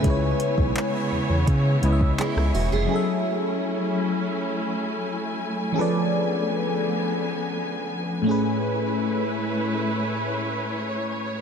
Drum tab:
HH |x-x-x---x-x-x-o-|----------------|----------------|----------------|
CP |----x-------x---|----------------|----------------|----------------|
SD |-------------r--|----------------|----------------|----------------|
BD |o--o----o--o----|----------------|----------------|----------------|